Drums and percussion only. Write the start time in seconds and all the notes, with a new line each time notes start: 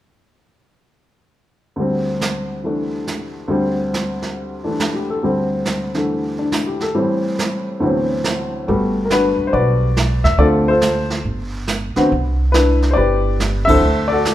1.79 brush sweep
2.21 snare, hi-hat pedal
2.64 brush sweep
3.07 snare, hi-hat pedal
3.50 brush sweep
3.94 snare, hi-hat pedal
4.22 snare
4.37 brush sweep
4.80 snare, hi-hat pedal
5.22 brush sweep
5.65 snare, hi-hat pedal
5.94 snare
6.09 brush sweep
6.52 snare, hi-hat pedal
6.80 snare
6.95 brush sweep
7.39 snare, hi-hat pedal
7.82 brush sweep
8.24 snare, hi-hat pedal
8.67 brush sweep
9.10 snare, hi-hat pedal
9.53 brush sweep
9.97 snare, hi-hat pedal
10.25 snare
10.39 brush sweep
10.81 snare, hi-hat pedal
11.10 snare
11.25 brush sweep
11.68 snare, hi-hat pedal
11.96 snare
12.10 brush sweep
12.54 snare, hi-hat pedal
12.82 snare
12.97 brush sweep
13.40 snare, hi-hat pedal
13.68 kick, ride
13.83 brush sweep
14.25 snare, hi-hat pedal